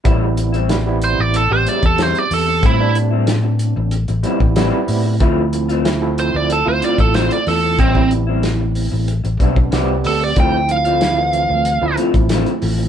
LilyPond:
<<
  \new Staff \with { instrumentName = "Lead electric guitar" } { \time 4/4 \key a \minor \tempo 4 = 93 r4. c''16 d''16 a'16 c''16 d''16 a'16 c''16 d''16 a'8 | e'8 r2. r8 | r4. c''16 d''16 a'16 c''16 d''16 a'16 c''16 d''16 a'8 | c'8 r2. a'16 d''16 |
g''8 f''2 r4. | }
  \new Staff \with { instrumentName = "Clean electric guitar" } { \time 4/4 \key a \minor <a, g c' e'>16 r8 <g c' e'>16 r4. <a, g c' e'>16 r16 <a, g c' e'>16 r8. | <a, g c' e'>16 r8 <g c' e'>16 r4. <a, g c' e'>16 r16 <a, g c' e'>16 r8. | <d a c' f'>16 r8 <a c' f'>16 r4. <d a c' f'>16 r16 <d a c' f'>16 r8. | <a, g c' e'>16 r8 <g c' e'>16 r4. <a, g c' e'>16 r16 <a, g c' e'>16 r8. |
<d a c' f'>16 r8 <a c' f'>16 r4. <d a c' f'>16 r16 <d a c' f'>16 r8. | }
  \new Staff \with { instrumentName = "Tine electric piano" } { \time 4/4 \key a \minor <g b c' e'>4 <g b c' e'>16 <g b c' e'>4 <g b c' g'>4.~ <g b c' g'>16 | r16 <g b c' d'>4.~ <g b c' d'>16 r8 <g b c' e'>8 <g b c' e'>4 | <f a c' e'>4 <f a c' e'>16 <f a c' e'>4 <a c' e' f'>4.~ <a c' e' f'>16 | r16 <g b c' e'>4.~ <g b c' e'>16 r8 <g b c' d'>8 <g b c' g'>4 |
<f a c' e'>4 <f a c' e'>16 <e f a c'>4 <f a c' e'>4.~ <f a c' e'>16 | }
  \new Staff \with { instrumentName = "Fingered electric bass" } { \clef bass \time 4/4 \key a \minor a,,4.~ a,,16 a,,8 a,,16 r16 e,8 r16 e,8 | a,4.~ a,16 a,,8 a,,16 r16 a,,8 r16 a,8 | d,4.~ d,16 d,8 d,16 r16 a,,8 r16 e,8 | a,,4.~ a,,16 a,,8 a,,16 b,,8 c,8 d,8 |
d,4.~ d,16 d,8 d,16 r16 a,,8 r16 a,,8 | }
  \new DrumStaff \with { instrumentName = "Drums" } \drummode { \time 4/4 <hh bd>8 hh16 hh16 <hh sn>8 hh8 hh8 hh16 <hh bd>16 <hh sn>16 hh16 hho8 | <hh bd>8 hh8 <hh sn>8 hh8 hh16 hh16 hh16 bd16 <hh sn>8 hho8 | <hh bd>8 hh16 hh16 <hh sn>8 hh8 hh8 hh16 <hh bd>16 <hh sn>16 hh16 <hho sn>8 | <hh bd>16 bd16 hh8 <hh sn>8 hho8 hh16 hh16 <hh bd>16 bd16 <hh sn>8 hho8 |
<hh bd>8 hh16 hh16 <hh sn>8 hh8 hh8 hh16 <hh bd>16 <hh sn>16 hh16 hho8 | }
>>